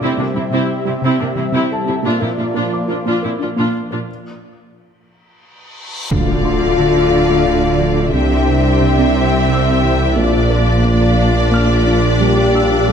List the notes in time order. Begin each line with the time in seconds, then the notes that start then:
Already playing: A5 D6
0.01 C3 G3 C4 E4 G4 E5
0.18 C3 A#3 C4 D4
0.34 C3 G3 C4 E4
0.51 C3 C4 E4
0.85 C3 G3 C4 E4
1.02 C3 C4 E4
1.19 C3 A#3 C4 D4
1.35 C3 E3 C4 E4
1.52 C3 C4 E4
1.71 A4 A5
1.86 C3 C4 E4
2.03 A#2 F3 A#3 D4 F4 D5
2.20 A#2 C4 E4 A#4
2.38 A#2 D4 F4
2.54 A#2 A#3 D4 F4
2.73 D6
2.88 A#2 D4 F4
3.06 A#2 A#3 D4 F4
3.23 A#2 C4 E4 A#4
3.40 A#2 D4 F4
3.56 A#2 A#3 D4 F4
3.91 A#2 D4 F4 A#4
4.08 reverse cymbal
6.10 D1 D2 D3 A3 D4 F4 A4 D5 F5, impact
6.28 A3
6.45 D4 C6
6.80 D3
6.97 D4
7.30 A3
7.46 D3
7.80 F3
8.13 C2 C3 G3 C4 D4 C5 E5 G5
8.31 G3
8.48 C4
8.82 C3
8.99 C4
9.17 C4
9.33 G3
9.49 C3 E6
9.82 E3 E4
10.16 A#1 A#2 F3 A#3 D4 F4 D5
10.33 F4
10.50 A#4
10.84 A#3
11.01 A#4
11.36 F4
11.52 A#3 F6
11.87 D4
12.20 G3 A#3 G4
12.38 D4
12.55 G4 E6
12.88 G3